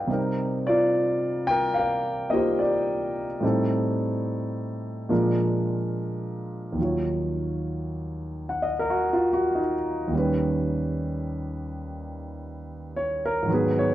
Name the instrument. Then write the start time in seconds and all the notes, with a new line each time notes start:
grand piano
Already playing: G3 A4 B4 D5 D#5 F5 G5
0.08 C3 G3 C4 D#4
0.13 A#4
0.67 F4 D5
1.47 A#4 G5
1.74 F5
1.79 A#4
2.30 A#3 D#4 F4 C5 D#5
2.35 G4
2.59 G4 D5
3.40 A2 G3 C4 D#4
3.45 A4
5.09 A#2 F3 G#3 D4 A#4
6.73 D#2 D#3
6.78 F#3 F4
6.84 C#5
8.49 F#5
8.62 D#5
8.79 A#4
8.90 F#4
9.13 F4
9.33 F#4
9.55 D#4
10.08 D#2 D#3
10.14 G3 C#4
10.18 B4
12.97 C#5
13.26 A#4
13.42 G#2 D#3
13.49 F#3 B3
13.53 G#4 B4
13.79 C#5